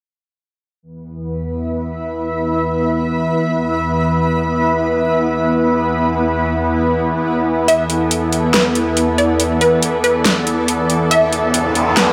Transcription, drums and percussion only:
0, 0, Header, 1, 2, 480
1, 0, Start_track
1, 0, Tempo, 428571
1, 925, Time_signature, 4, 2, 24, 8
1, 13584, End_track
2, 0, Start_track
2, 0, Title_t, "Drums"
2, 8604, Note_on_c, 9, 42, 72
2, 8716, Note_off_c, 9, 42, 0
2, 8844, Note_on_c, 9, 42, 49
2, 8956, Note_off_c, 9, 42, 0
2, 9084, Note_on_c, 9, 42, 72
2, 9196, Note_off_c, 9, 42, 0
2, 9324, Note_on_c, 9, 42, 47
2, 9436, Note_off_c, 9, 42, 0
2, 9563, Note_on_c, 9, 38, 119
2, 9563, Note_on_c, 9, 42, 75
2, 9675, Note_off_c, 9, 38, 0
2, 9675, Note_off_c, 9, 42, 0
2, 9804, Note_on_c, 9, 42, 54
2, 9916, Note_off_c, 9, 42, 0
2, 10044, Note_on_c, 9, 42, 72
2, 10156, Note_off_c, 9, 42, 0
2, 10284, Note_on_c, 9, 42, 47
2, 10396, Note_off_c, 9, 42, 0
2, 10524, Note_on_c, 9, 42, 76
2, 10636, Note_off_c, 9, 42, 0
2, 10764, Note_on_c, 9, 42, 51
2, 10876, Note_off_c, 9, 42, 0
2, 11004, Note_on_c, 9, 42, 74
2, 11116, Note_off_c, 9, 42, 0
2, 11244, Note_on_c, 9, 42, 51
2, 11356, Note_off_c, 9, 42, 0
2, 11483, Note_on_c, 9, 38, 109
2, 11483, Note_on_c, 9, 42, 79
2, 11595, Note_off_c, 9, 38, 0
2, 11595, Note_off_c, 9, 42, 0
2, 11724, Note_on_c, 9, 42, 56
2, 11836, Note_off_c, 9, 42, 0
2, 11964, Note_on_c, 9, 42, 75
2, 12076, Note_off_c, 9, 42, 0
2, 12204, Note_on_c, 9, 42, 51
2, 12316, Note_off_c, 9, 42, 0
2, 12444, Note_on_c, 9, 42, 78
2, 12556, Note_off_c, 9, 42, 0
2, 12684, Note_on_c, 9, 42, 53
2, 12796, Note_off_c, 9, 42, 0
2, 12924, Note_on_c, 9, 42, 76
2, 13036, Note_off_c, 9, 42, 0
2, 13164, Note_on_c, 9, 42, 52
2, 13276, Note_off_c, 9, 42, 0
2, 13404, Note_on_c, 9, 38, 112
2, 13404, Note_on_c, 9, 42, 78
2, 13516, Note_off_c, 9, 38, 0
2, 13516, Note_off_c, 9, 42, 0
2, 13584, End_track
0, 0, End_of_file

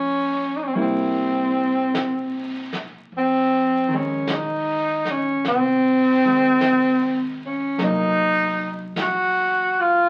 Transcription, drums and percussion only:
0, 0, Header, 1, 2, 480
1, 0, Start_track
1, 0, Tempo, 1169591
1, 1275, Time_signature, 4, 2, 24, 8
1, 4142, End_track
2, 0, Start_track
2, 0, Title_t, "Drums"
2, 313, Note_on_c, 9, 25, 35
2, 799, Note_off_c, 9, 25, 0
2, 799, Note_on_c, 9, 25, 33
2, 799, Note_on_c, 9, 38, 48
2, 799, Note_on_c, 9, 44, 45
2, 840, Note_off_c, 9, 38, 0
2, 840, Note_off_c, 9, 44, 0
2, 1119, Note_on_c, 9, 38, 27
2, 1160, Note_off_c, 9, 38, 0
2, 1276, Note_off_c, 9, 25, 0
2, 1276, Note_on_c, 9, 25, 41
2, 1754, Note_off_c, 9, 25, 0
2, 1754, Note_on_c, 9, 25, 31
2, 1754, Note_on_c, 9, 38, 41
2, 1754, Note_on_c, 9, 44, 44
2, 1795, Note_off_c, 9, 38, 0
2, 1795, Note_off_c, 9, 44, 0
2, 2073, Note_on_c, 9, 38, 23
2, 2115, Note_off_c, 9, 38, 0
2, 2235, Note_off_c, 9, 25, 0
2, 2235, Note_on_c, 9, 25, 40
2, 2235, Note_on_c, 9, 38, 28
2, 2276, Note_off_c, 9, 38, 0
2, 2712, Note_off_c, 9, 25, 0
2, 2712, Note_on_c, 9, 25, 42
2, 2712, Note_on_c, 9, 38, 46
2, 2712, Note_on_c, 9, 44, 50
2, 2753, Note_off_c, 9, 38, 0
2, 2753, Note_off_c, 9, 44, 0
2, 3196, Note_off_c, 9, 25, 0
2, 3196, Note_on_c, 9, 25, 37
2, 3196, Note_on_c, 9, 38, 31
2, 3237, Note_off_c, 9, 38, 0
2, 3678, Note_off_c, 9, 25, 0
2, 3678, Note_on_c, 9, 25, 35
2, 3678, Note_on_c, 9, 38, 43
2, 3678, Note_on_c, 9, 44, 47
2, 3719, Note_off_c, 9, 38, 0
2, 3719, Note_off_c, 9, 44, 0
2, 4142, Note_off_c, 9, 25, 0
2, 4142, End_track
0, 0, End_of_file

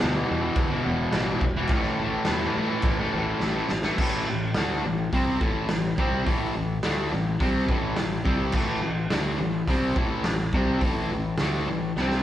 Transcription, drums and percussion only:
0, 0, Header, 1, 2, 480
1, 0, Start_track
1, 0, Key_signature, 0, "minor"
1, 0, Tempo, 569801
1, 1439, Time_signature, 4, 2, 24, 8
1, 10301, End_track
2, 0, Start_track
2, 0, Title_t, "Drums"
2, 0, Note_on_c, 9, 49, 64
2, 82, Note_off_c, 9, 49, 0
2, 468, Note_on_c, 9, 49, 61
2, 472, Note_on_c, 9, 36, 115
2, 552, Note_off_c, 9, 49, 0
2, 556, Note_off_c, 9, 36, 0
2, 948, Note_on_c, 9, 38, 117
2, 951, Note_on_c, 9, 49, 63
2, 1032, Note_off_c, 9, 38, 0
2, 1036, Note_off_c, 9, 49, 0
2, 1189, Note_on_c, 9, 36, 92
2, 1273, Note_off_c, 9, 36, 0
2, 1410, Note_on_c, 9, 49, 61
2, 1426, Note_on_c, 9, 36, 122
2, 1494, Note_off_c, 9, 49, 0
2, 1510, Note_off_c, 9, 36, 0
2, 1540, Note_on_c, 9, 38, 34
2, 1624, Note_off_c, 9, 38, 0
2, 1894, Note_on_c, 9, 38, 122
2, 1897, Note_on_c, 9, 49, 64
2, 1978, Note_off_c, 9, 38, 0
2, 1981, Note_off_c, 9, 49, 0
2, 2377, Note_on_c, 9, 49, 72
2, 2387, Note_on_c, 9, 36, 124
2, 2461, Note_off_c, 9, 49, 0
2, 2472, Note_off_c, 9, 36, 0
2, 2865, Note_on_c, 9, 38, 69
2, 2949, Note_off_c, 9, 38, 0
2, 3106, Note_on_c, 9, 38, 97
2, 3190, Note_off_c, 9, 38, 0
2, 3219, Note_on_c, 9, 38, 91
2, 3303, Note_off_c, 9, 38, 0
2, 3355, Note_on_c, 9, 57, 121
2, 3356, Note_on_c, 9, 36, 104
2, 3439, Note_off_c, 9, 57, 0
2, 3440, Note_off_c, 9, 36, 0
2, 3829, Note_on_c, 9, 38, 119
2, 3832, Note_on_c, 9, 46, 60
2, 3913, Note_off_c, 9, 38, 0
2, 3916, Note_off_c, 9, 46, 0
2, 4317, Note_on_c, 9, 46, 63
2, 4319, Note_on_c, 9, 36, 104
2, 4401, Note_off_c, 9, 46, 0
2, 4403, Note_off_c, 9, 36, 0
2, 4558, Note_on_c, 9, 36, 111
2, 4643, Note_off_c, 9, 36, 0
2, 4791, Note_on_c, 9, 38, 117
2, 4795, Note_on_c, 9, 46, 58
2, 4876, Note_off_c, 9, 38, 0
2, 4879, Note_off_c, 9, 46, 0
2, 4914, Note_on_c, 9, 38, 32
2, 4999, Note_off_c, 9, 38, 0
2, 5038, Note_on_c, 9, 36, 104
2, 5122, Note_off_c, 9, 36, 0
2, 5278, Note_on_c, 9, 36, 106
2, 5286, Note_on_c, 9, 46, 61
2, 5363, Note_off_c, 9, 36, 0
2, 5371, Note_off_c, 9, 46, 0
2, 5753, Note_on_c, 9, 38, 115
2, 5756, Note_on_c, 9, 46, 65
2, 5837, Note_off_c, 9, 38, 0
2, 5841, Note_off_c, 9, 46, 0
2, 5999, Note_on_c, 9, 38, 35
2, 6083, Note_off_c, 9, 38, 0
2, 6235, Note_on_c, 9, 36, 112
2, 6240, Note_on_c, 9, 46, 63
2, 6320, Note_off_c, 9, 36, 0
2, 6324, Note_off_c, 9, 46, 0
2, 6474, Note_on_c, 9, 36, 112
2, 6558, Note_off_c, 9, 36, 0
2, 6709, Note_on_c, 9, 38, 120
2, 6713, Note_on_c, 9, 46, 71
2, 6794, Note_off_c, 9, 38, 0
2, 6797, Note_off_c, 9, 46, 0
2, 6954, Note_on_c, 9, 36, 109
2, 7038, Note_off_c, 9, 36, 0
2, 7179, Note_on_c, 9, 57, 106
2, 7190, Note_on_c, 9, 36, 101
2, 7263, Note_off_c, 9, 57, 0
2, 7275, Note_off_c, 9, 36, 0
2, 7670, Note_on_c, 9, 38, 123
2, 7673, Note_on_c, 9, 46, 65
2, 7754, Note_off_c, 9, 38, 0
2, 7757, Note_off_c, 9, 46, 0
2, 8151, Note_on_c, 9, 36, 104
2, 8152, Note_on_c, 9, 46, 63
2, 8235, Note_off_c, 9, 36, 0
2, 8236, Note_off_c, 9, 46, 0
2, 8391, Note_on_c, 9, 36, 113
2, 8475, Note_off_c, 9, 36, 0
2, 8627, Note_on_c, 9, 38, 113
2, 8631, Note_on_c, 9, 46, 63
2, 8712, Note_off_c, 9, 38, 0
2, 8715, Note_off_c, 9, 46, 0
2, 8747, Note_on_c, 9, 38, 33
2, 8831, Note_off_c, 9, 38, 0
2, 8869, Note_on_c, 9, 36, 111
2, 8953, Note_off_c, 9, 36, 0
2, 9110, Note_on_c, 9, 36, 108
2, 9111, Note_on_c, 9, 46, 62
2, 9194, Note_off_c, 9, 36, 0
2, 9195, Note_off_c, 9, 46, 0
2, 9583, Note_on_c, 9, 38, 119
2, 9586, Note_on_c, 9, 46, 60
2, 9667, Note_off_c, 9, 38, 0
2, 9670, Note_off_c, 9, 46, 0
2, 10079, Note_on_c, 9, 38, 66
2, 10163, Note_off_c, 9, 38, 0
2, 10197, Note_on_c, 9, 38, 63
2, 10281, Note_off_c, 9, 38, 0
2, 10301, End_track
0, 0, End_of_file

